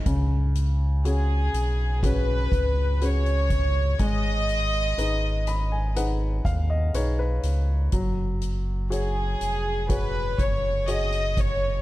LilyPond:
<<
  \new Staff \with { instrumentName = "Violin section" } { \time 4/4 \key gis \dorian \tempo 4 = 61 r4 gis'4 b'4 cis''4 | dis''2 r2 | r4 gis'4 b'8 cis''8 dis''8 cis''8 | }
  \new Staff \with { instrumentName = "Upright piano" } { \time 4/4 \key gis \dorian << { r1 | r4. b''16 gis''16 fis''8 eis''16 dis''16 cis''16 b'8. | r1 | } \\ { cis4 <cis' fis' gis'>4 <cis' fis' gis'>4 <cis' fis' gis'>4 | gis4 <dis' gis' b'>4 <dis' gis' b'>4 <dis' gis' b'>4 | fis4 <fis' gis' cis''>4 <fis' gis' cis''>4 <fis' gis' cis''>4 | } >> }
  \new Staff \with { instrumentName = "Sub bass" } { \clef bass \time 4/4 \key gis \dorian cis,4. b,,4 cis,4. | gis,,4 gis,,4. dis,8 b,,8 cis,8 | fis,,4. eis,,4 fis,,4. | }
  \new DrumStaff \with { instrumentName = "Drums" } \drummode { \time 4/4 <hh bd>8 hh8 hh8 hh8 <hh bd>8 <hh bd>8 hh16 hh16 <hh bd>8 | <hh bd>8 hh8 hh8 hh8 hh8 <hh bd>8 hh8 hh8 | <hh bd>8 hh8 hh8 hh8 <hh bd>8 <hh bd>8 hh16 hh16 <hh bd>8 | }
>>